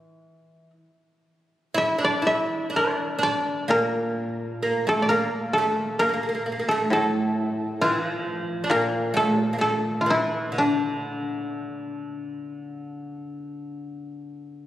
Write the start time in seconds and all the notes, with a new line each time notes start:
Already playing: E3 E4
1.74 E4 E5
1.98 D4
2.04 D5
2.22 E4
2.27 E5
2.70 D4
2.76 D5
3.19 D4
3.23 D5
3.68 A#2 A#3 A#4
4.63 A#3
4.87 A3 A4
5.02 D5
5.09 A#3 A#4
5.53 A4
5.58 A3
5.99 A#3 A#4
6.09 A#3
6.14 A#3
6.23 A#3
6.29 A#3
6.35 A#3
6.46 A#3
6.52 A#3
6.59 A#3
6.69 A3 A4
6.90 A2 A3 A4
7.81 E3 F4
8.01 F3
8.64 D4
8.70 A#2 A#3 A#4
9.14 A3 A4
9.40 F3
9.53 A#3
9.59 A3 A4
10.01 F4
10.06 E3
10.10 E4
10.52 D3
10.58 D4